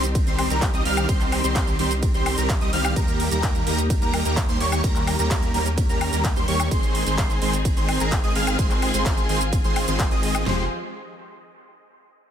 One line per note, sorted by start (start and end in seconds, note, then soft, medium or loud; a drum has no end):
0.00 0.24 C2 loud
0.00 2.93 C4 medium
0.00 2.93 D#4 medium
0.00 6.67 G4 medium
0.00 closed hi-hat soft
0.00 shaker medium
0.15 kick loud
0.15 closed hi-hat medium
0.15 ride medium
0.15 shaker medium
0.27 0.48 C2 loud
0.27 0.48 D#3 medium
0.27 0.48 G3 medium
0.27 0.48 C4 medium
0.27 0.48 G4 medium
0.27 0.48 C5 medium
0.27 0.48 C6 medium
0.27 closed hi-hat soft
0.27 shaker soft
0.39 open hi-hat loud
0.39 high woodblock medium
0.50 0.71 C2 medium
0.50 0.63 D#3 medium
0.50 0.63 G3 medium
0.50 0.63 C4 medium
0.50 0.63 G4 medium
0.50 0.63 A#4 medium
0.50 0.63 A#5 medium
0.50 closed hi-hat medium
0.50 shaker medium
0.62 kick loud
0.62 clap loud
0.62 closed hi-hat medium
0.62 ride medium
0.62 shaker medium
0.74 0.83 C2 loud
0.74 0.83 D#3 medium
0.74 0.83 G3 medium
0.74 0.83 C4 medium
0.74 0.83 G4 medium
0.74 0.83 D#5 loud
0.74 0.83 D#6 loud
0.74 closed hi-hat soft
0.74 shaker soft
0.85 1.07 C2 loud
0.85 1.06 D#3 loud
0.85 1.06 G3 medium
0.85 1.06 C4 medium
0.85 1.06 G4 medium
0.85 1.06 F5 loud
0.85 1.06 F6 loud
0.85 open hi-hat loud
0.97 closed hi-hat soft
0.97 high woodblock medium
0.97 shaker medium
1.09 1.42 C2 loud
1.09 1.41 D#3 medium
1.09 1.41 G3 medium
1.09 1.41 C4 medium
1.09 1.41 G4 medium
1.09 1.41 C5 medium
1.09 1.41 C6 medium
1.09 kick loud
1.09 closed hi-hat medium
1.09 ride medium
1.09 shaker medium
1.21 clap soft
1.21 closed hi-hat soft
1.21 shaker soft
1.32 open hi-hat loud
1.32 high woodblock medium
1.44 1.77 C2 loud
1.44 1.76 D#3 medium
1.44 1.76 G3 medium
1.44 1.76 C4 medium
1.44 1.76 G4 medium
1.44 1.76 C5 medium
1.44 1.76 C6 medium
1.44 closed hi-hat medium
1.44 shaker medium
1.56 kick loud
1.56 clap loud
1.56 closed hi-hat medium
1.56 ride medium
1.56 shaker medium
1.67 closed hi-hat soft
1.67 shaker soft
1.79 2.12 C2 loud
1.79 1.92 D#3 medium
1.79 1.92 G3 medium
1.79 1.92 C4 medium
1.79 1.92 G4 medium
1.79 1.92 C5 loud
1.79 1.92 C6 medium
1.79 open hi-hat loud
1.91 closed hi-hat medium
1.91 shaker medium
2.03 kick loud
2.03 closed hi-hat medium
2.03 ride medium
2.03 shaker medium
2.14 2.35 C2 loud
2.14 2.35 D#3 medium
2.14 2.35 G3 medium
2.14 2.35 C4 medium
2.14 2.35 G4 medium
2.14 2.35 C5 medium
2.14 2.35 C6 medium
2.14 closed hi-hat soft
2.14 shaker soft
2.26 open hi-hat loud
2.26 high woodblock medium
2.38 2.59 C2 loud
2.38 2.50 D#3 medium
2.38 2.50 G3 medium
2.38 2.50 C4 medium
2.38 2.50 G4 medium
2.38 2.50 A#4 medium
2.38 2.51 A#5 medium
2.38 closed hi-hat soft
2.38 shaker medium
2.49 kick loud
2.49 clap loud
2.49 closed hi-hat medium
2.49 ride medium
2.49 shaker medium
2.61 2.71 C2 loud
2.61 2.70 D#3 medium
2.61 2.70 G3 medium
2.61 2.70 C4 medium
2.61 2.70 G4 medium
2.61 2.70 D#5 loud
2.61 2.70 D#6 loud
2.61 closed hi-hat soft
2.61 shaker soft
2.73 2.94 C2 loud
2.73 2.94 D#3 loud
2.73 2.94 G3 medium
2.73 2.94 C4 medium
2.73 2.94 G4 medium
2.73 2.94 F5 loud
2.73 2.94 F6 loud
2.73 open hi-hat loud
2.85 closed hi-hat soft
2.85 high woodblock medium
2.85 shaker medium
2.96 3.29 D#2 loud
2.96 3.29 D#3 medium
2.96 3.29 G3 medium
2.96 6.68 A#3 medium
2.96 3.29 A#3 medium
2.96 4.82 D#4 medium
2.96 3.29 G4 medium
2.96 3.29 A#4 medium
2.96 3.29 A#5 medium
2.96 kick loud
2.96 closed hi-hat medium
2.96 ride medium
2.96 shaker medium
3.08 closed hi-hat soft
3.08 shaker soft
3.20 open hi-hat loud
3.31 3.64 D#2 loud
3.31 3.64 D#3 medium
3.31 3.64 G3 medium
3.31 3.64 A#3 medium
3.31 3.64 G4 medium
3.31 3.64 A#4 medium
3.31 3.64 A#5 medium
3.31 closed hi-hat medium
3.31 shaker medium
3.43 kick loud
3.43 clap loud
3.43 closed hi-hat medium
3.43 ride medium
3.43 shaker medium
3.55 closed hi-hat soft
3.55 shaker soft
3.67 4.00 D#2 loud
3.67 3.79 D#3 medium
3.67 3.79 G3 medium
3.67 3.79 A#3 medium
3.67 3.79 G4 medium
3.67 3.79 A#4 loud
3.67 3.79 A#5 medium
3.67 open hi-hat loud
3.78 closed hi-hat medium
3.78 shaker medium
3.90 kick loud
3.90 closed hi-hat medium
3.90 ride medium
3.90 shaker medium
4.02 4.23 D#2 loud
4.02 4.23 D#3 medium
4.02 4.23 G3 medium
4.02 4.23 A#3 medium
4.02 4.23 G4 medium
4.02 4.23 A#4 medium
4.02 4.23 A#5 medium
4.02 closed hi-hat soft
4.02 shaker soft
4.14 open hi-hat loud
4.14 high woodblock medium
4.25 4.46 D#2 loud
4.25 4.38 D#3 medium
4.25 4.38 G3 medium
4.25 4.38 A#3 medium
4.25 4.38 G4 medium
4.25 4.38 A#4 medium
4.25 4.38 A#5 medium
4.25 closed hi-hat medium
4.25 shaker medium
4.37 kick loud
4.37 clap loud
4.37 closed hi-hat medium
4.37 ride medium
4.37 shaker medium
4.49 4.58 D#2 loud
4.49 4.58 D#3 loud
4.49 4.58 G3 medium
4.49 4.58 A#3 medium
4.49 4.58 G4 medium
4.49 4.58 C5 loud
4.49 4.58 C6 loud
4.49 closed hi-hat soft
4.49 shaker soft
4.60 4.82 D#2 loud
4.60 4.81 D#3 loud
4.60 4.81 G3 medium
4.60 4.81 A#3 medium
4.60 4.81 G4 medium
4.60 4.81 C#5 loud
4.60 4.81 C#6 loud
4.60 open hi-hat loud
4.72 closed hi-hat soft
4.72 high woodblock medium
4.72 shaker medium
4.84 5.17 D#2 loud
4.84 5.16 D#3 medium
4.84 5.16 A#3 medium
4.84 6.70 C#4 medium
4.84 5.16 A#4 medium
4.84 5.16 A#5 medium
4.84 kick loud
4.84 closed hi-hat medium
4.84 ride medium
4.84 shaker medium
4.96 clap soft
4.96 closed hi-hat soft
4.96 shaker soft
5.07 open hi-hat loud
5.07 high woodblock medium
5.19 5.52 D#2 loud
5.19 5.51 D#3 medium
5.19 5.51 G3 medium
5.19 5.51 A#3 medium
5.19 5.51 G4 medium
5.19 5.51 A#4 medium
5.19 5.51 A#5 medium
5.19 closed hi-hat medium
5.19 shaker medium
5.31 kick loud
5.31 clap loud
5.31 closed hi-hat medium
5.31 ride medium
5.31 shaker medium
5.43 closed hi-hat soft
5.43 shaker soft
5.54 5.87 D#2 loud
5.54 5.67 D#3 medium
5.54 5.67 G3 medium
5.54 5.67 A#3 medium
5.54 5.67 G4 medium
5.54 5.67 A#4 medium
5.54 5.67 A#5 medium
5.54 open hi-hat loud
5.66 closed hi-hat medium
5.66 shaker medium
5.78 kick loud
5.78 closed hi-hat medium
5.78 ride medium
5.78 shaker medium
5.89 6.10 D#2 loud
5.89 6.10 D#3 medium
5.89 6.10 G3 medium
5.89 6.10 A#3 medium
5.89 6.10 G4 medium
5.89 6.10 A#4 medium
5.89 6.10 A#5 medium
5.89 closed hi-hat soft
5.89 shaker soft
6.01 open hi-hat loud
6.01 high woodblock medium
6.13 6.34 D#2 loud
6.13 6.26 D#3 medium
6.13 6.26 G3 medium
6.13 6.26 A#3 medium
6.13 6.26 G4 medium
6.13 6.26 A#4 medium
6.13 6.25 A#5 medium
6.13 closed hi-hat medium
6.13 shaker medium
6.24 kick loud
6.24 clap loud
6.24 closed hi-hat medium
6.24 ride medium
6.24 shaker medium
6.36 6.46 D#2 loud
6.36 6.45 D#3 medium
6.36 6.45 G3 medium
6.36 6.45 A#3 medium
6.36 6.45 G4 medium
6.36 6.45 C5 loud
6.36 6.45 C6 loud
6.36 closed hi-hat soft
6.36 shaker soft
6.48 6.69 D#2 loud
6.48 6.69 D#3 loud
6.48 6.69 G3 medium
6.48 6.69 A#3 medium
6.48 6.69 G4 medium
6.48 6.69 C#5 loud
6.48 6.69 C#6 loud
6.48 open hi-hat loud
6.60 closed hi-hat medium
6.60 high woodblock medium
6.60 shaker medium
6.71 7.04 G#1 loud
6.71 7.04 D#3 medium
6.71 7.04 G#3 medium
6.71 7.04 C4 medium
6.71 10.43 C4 medium
6.71 8.57 D#4 medium
6.71 7.04 G#4 medium
6.71 10.43 G#4 medium
6.71 7.04 C5 medium
6.71 7.04 C6 medium
6.71 kick loud
6.71 closed hi-hat medium
6.71 ride medium
6.71 shaker medium
6.83 closed hi-hat soft
6.83 shaker soft
6.95 open hi-hat loud
7.06 7.39 G#1 loud
7.06 7.39 D#3 medium
7.06 7.39 G#3 medium
7.06 7.39 C4 medium
7.06 7.39 G#4 medium
7.06 7.39 C5 medium
7.06 7.39 C6 medium
7.06 closed hi-hat medium
7.06 shaker medium
7.18 kick loud
7.18 clap loud
7.18 closed hi-hat medium
7.18 ride medium
7.18 shaker medium
7.30 closed hi-hat soft
7.30 shaker soft
7.42 7.75 G#1 loud
7.42 7.54 D#3 medium
7.42 7.54 G#3 medium
7.42 7.54 C4 medium
7.42 7.54 G#4 medium
7.42 7.54 C5 loud
7.42 7.54 C6 medium
7.42 open hi-hat loud
7.53 closed hi-hat medium
7.53 shaker medium
7.65 kick loud
7.65 closed hi-hat medium
7.65 ride medium
7.65 shaker medium
7.77 7.98 G#1 loud
7.77 7.98 D#3 medium
7.77 7.98 G#3 medium
7.77 7.98 C4 medium
7.77 7.98 G#4 medium
7.77 7.98 C5 medium
7.77 7.98 C6 medium
7.77 closed hi-hat soft
7.77 shaker soft
7.89 open hi-hat loud
7.89 high woodblock medium
8.00 8.21 G#1 loud
8.00 8.13 D#3 medium
8.00 8.13 G#3 medium
8.00 8.13 C4 medium
8.00 8.13 G#4 medium
8.00 8.13 A#4 medium
8.00 8.13 A#5 medium
8.00 closed hi-hat medium
8.00 shaker medium
8.12 kick loud
8.12 clap loud
8.12 closed hi-hat medium
8.12 ride medium
8.12 shaker medium
8.24 8.33 G#1 loud
8.24 8.33 D#3 loud
8.24 8.33 G#3 medium
8.24 8.33 C4 medium
8.24 8.33 G#4 medium
8.24 8.33 D#5 loud
8.24 8.33 D#6 loud
8.24 closed hi-hat soft
8.24 shaker soft
8.35 8.57 G#1 loud
8.35 8.56 D#3 loud
8.35 8.56 G#3 medium
8.35 8.56 C4 medium
8.35 8.56 G#4 medium
8.35 8.56 F5 loud
8.35 8.56 F6 loud
8.35 open hi-hat loud
8.47 closed hi-hat medium
8.47 high woodblock medium
8.47 shaker medium
8.59 8.92 G#1 loud
8.59 8.91 D#3 medium
8.59 8.91 G#3 medium
8.59 8.91 C4 medium
8.59 10.45 F4 medium
8.59 8.91 G#4 medium
8.59 8.91 C5 medium
8.59 8.91 C6 medium
8.59 kick loud
8.59 closed hi-hat medium
8.59 ride medium
8.59 shaker medium
8.71 clap soft
8.71 closed hi-hat soft
8.71 shaker soft
8.82 open hi-hat loud
8.82 high woodblock medium
8.94 9.27 G#1 loud
8.94 9.26 D#3 medium
8.94 9.26 G#3 medium
8.94 9.26 C4 medium
8.94 9.26 G#4 medium
8.94 9.26 C5 medium
8.94 9.26 C6 medium
8.94 closed hi-hat medium
8.94 shaker medium
9.06 kick loud
9.06 clap loud
9.06 closed hi-hat medium
9.06 ride medium
9.06 shaker medium
9.18 closed hi-hat soft
9.18 shaker soft
9.29 9.62 G#1 loud
9.29 9.42 D#3 medium
9.29 9.42 G#3 medium
9.29 9.42 C4 medium
9.29 9.42 G#4 medium
9.29 9.42 C5 loud
9.29 9.42 C6 medium
9.29 open hi-hat loud
9.41 closed hi-hat medium
9.41 shaker medium
9.53 kick loud
9.53 closed hi-hat medium
9.53 ride medium
9.53 shaker medium
9.64 9.86 G#1 medium
9.64 9.85 D#3 medium
9.64 9.85 G#3 medium
9.64 9.85 C4 medium
9.64 9.85 G#4 medium
9.64 9.85 C5 medium
9.64 9.85 C6 medium
9.64 closed hi-hat soft
9.64 shaker soft
9.76 open hi-hat loud
9.76 high woodblock medium
9.88 10.09 G#1 loud
9.88 10.08 D#3 medium
9.88 10.08 G#3 medium
9.88 10.08 C4 medium
9.88 10.08 G#4 medium
9.88 10.08 C5 loud
9.88 10.08 C6 loud
9.88 closed hi-hat medium
9.88 shaker medium
9.99 kick loud
9.99 clap loud
9.99 closed hi-hat medium
9.99 ride medium
9.99 shaker medium
10.11 10.44 G#1 loud
10.11 10.44 D#3 medium
10.11 10.44 G#3 medium
10.11 10.44 C4 medium
10.11 10.44 G#4 medium
10.11 10.44 D#5 medium
10.11 10.44 D#6 medium
10.11 closed hi-hat soft
10.11 shaker soft
10.23 open hi-hat loud
10.35 closed hi-hat medium
10.35 high woodblock medium
10.35 shaker medium
10.46 10.68 F1 loud
10.46 10.68 F3 medium
10.46 10.64 F3 medium
10.46 10.64 G#3 medium
10.46 10.64 C4 medium
10.46 10.68 F4 medium
10.46 10.68 G4 medium
10.46 10.64 G4 medium
10.46 10.68 G#4 medium
10.46 10.68 C5 medium
10.46 10.64 C5 loud
10.46 10.64 C6 loud
10.46 snare loud
10.46 floor tom loud